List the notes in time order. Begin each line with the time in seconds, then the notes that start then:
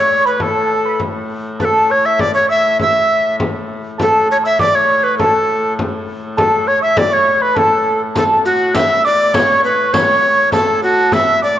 Already playing: A2 C#5 C#6
0.10 frame drum
0.25 B4 B5
0.40 A4 A5, frame drum
0.85 B5
1.00 frame drum
1.30 frame drum
1.59 B4 A5, frame drum
1.65 A4
1.90 C#5 C#6
2.05 E5 E6
2.19 D5 D6, frame drum
2.34 C#5 C#6
2.49 E5 E6
2.79 E5 E6, frame drum
3.40 A2, frame drum
3.70 frame drum
3.98 A4 A5, frame drum
4.31 C#5
4.44 E5 E6
4.59 D5 D6, frame drum
4.75 C#5 C#6
4.90 frame drum
5.03 B4
5.18 A4 A5, frame drum
5.79 frame drum
6.08 frame drum
6.37 A4 A5, frame drum
6.67 C#5 C#6
6.82 E5 E6
6.97 D5 D6, frame drum
7.11 C#5 C#6
7.41 B4 B5
7.55 A4 A5, frame drum
7.87 frame drum
8.15 A2 A4 A5, riq, frame drum
8.45 F#4 F#6, frame drum
8.74 E5 E6, riq, frame drum
8.98 E6
9.05 D5 D6
9.34 C#5 C#6, riq, frame drum
9.64 B4, frame drum
9.93 C#5 C#6, riq, frame drum
10.52 A4 A5, riq, frame drum
10.82 F#4, frame drum
11.12 E5 E6, riq, frame drum
11.42 D5 D6